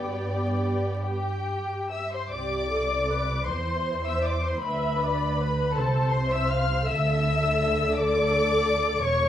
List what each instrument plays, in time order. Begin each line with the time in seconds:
Already playing: double bass section G2, cello section B3, viola section G4, violin section D5 G5
1.03 violin section G4 G5
1.91 violin section E5 E6
2.13 violin section C5 C6
2.31 double bass section C2, cello section C3, viola section G4, violin section D5 D6
2.71 viola section A4
3.10 viola section B4
3.47 double bass section E2, cello section E3, violin section C5 C6, viola section C5
4.05 violin section E5 E6
4.25 violin section D5 D6
4.46 violin section C5 C6
4.64 double bass section D2, cello section D3, violin section B4 B5, viola section E5
5.03 viola section D5
5.40 viola section B4
5.74 double bass section C2, cello section C3, violin section A4 A5, viola section C5
6.12 violin section C5 C6
6.31 violin section E5 E6
6.50 violin section F5 F6
6.86 double bass section D2, cello section D3, viola section A4, violin section E5 E6
7.95 violin section D5 D6
9.03 double bass section E1, cello section E2, violin section C#5 C#6, viola section C#5